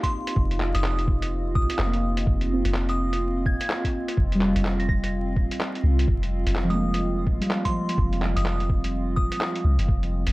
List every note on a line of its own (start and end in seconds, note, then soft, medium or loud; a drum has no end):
0.00 2.53 C4 medium
0.00 10.32 C4 medium
0.00 1.20 D#4 medium
0.00 10.32 F4 medium
0.00 1.22 G4 medium
0.00 10.32 D#5 medium
0.00 2.26 F5 medium
0.00 0.28 C6 medium
0.00 kick medium
0.00 closed hi-hat soft
0.27 closed hi-hat medium
0.36 0.73 F1 medium
0.36 kick loud
0.51 closed hi-hat soft
0.60 clap medium
0.75 1.57 F1 medium
0.75 0.99 D#6 medium
0.75 closed hi-hat medium
0.84 clap loud
0.99 closed hi-hat soft
1.08 kick loud
1.22 closed hi-hat soft
1.55 1.69 C2 medium
1.55 2.03 D#6 medium
1.55 kick loud
1.70 closed hi-hat soft
1.79 2.25 F1 medium
1.79 clap loud
1.87 3.63 A#3 soft
1.93 closed hi-hat soft
2.17 closed hi-hat soft
2.27 2.63 F1 medium
2.27 9.88 F5 medium
2.27 kick loud
2.41 closed hi-hat soft
2.53 4.31 C4 medium
2.65 3.58 F1 medium
2.65 closed hi-hat medium
2.74 clap loud
2.89 3.14 D#6 medium
2.89 closed hi-hat soft
3.13 closed hi-hat soft
3.46 3.71 G#6 medium
3.46 kick medium
3.61 closed hi-hat soft
3.70 clap loud
3.84 kick medium
3.84 closed hi-hat soft
4.08 closed hi-hat soft
4.17 4.54 F1 medium
4.17 kick loud
4.32 6.11 G3 medium
4.32 closed hi-hat soft
4.41 clap soft
4.56 5.49 F1 medium
4.56 closed hi-hat medium
4.65 clap loud
4.79 4.85 A#6 medium
4.79 closed hi-hat soft
4.89 4.98 A#6 medium
4.89 kick loud
5.04 closed hi-hat soft
5.36 kick medium
5.51 closed hi-hat soft
5.60 clap medium
5.75 closed hi-hat soft
5.84 6.06 C2 medium
5.99 closed hi-hat soft
6.08 6.44 F1 loud
6.08 kick loud
6.23 closed hi-hat soft
6.46 7.40 F1 medium
6.46 closed hi-hat medium
6.55 clap loud
6.64 7.68 F3 medium
6.69 8.42 G#3 medium
6.69 6.95 D#6 medium
6.69 closed hi-hat soft
6.74 8.45 A#3 medium
6.94 closed hi-hat soft
7.27 kick medium
7.41 9.15 G3 medium
7.41 closed hi-hat soft
7.50 clap loud
7.65 9.46 F3 medium
7.65 7.90 C6 medium
7.65 kick medium
7.65 closed hi-hat soft
7.89 closed hi-hat soft
7.98 8.35 F1 loud
7.98 kick loud
8.13 closed hi-hat soft
8.22 clap medium
8.36 9.30 F1 medium
8.36 8.61 D#6 medium
8.36 closed hi-hat medium
8.45 clap loud
8.60 closed hi-hat soft
8.69 kick medium
8.84 closed hi-hat soft
9.16 9.64 D#6 medium
9.16 kick medium
9.32 closed hi-hat medium
9.41 clap medium
9.56 closed hi-hat soft
9.65 9.78 C2 loud
9.79 9.88 F1 medium
9.79 closed hi-hat medium
9.88 10.25 F1 loud
9.88 10.32 G#5 medium
9.88 kick loud
10.03 closed hi-hat soft
10.27 10.32 F1 medium
10.27 closed hi-hat medium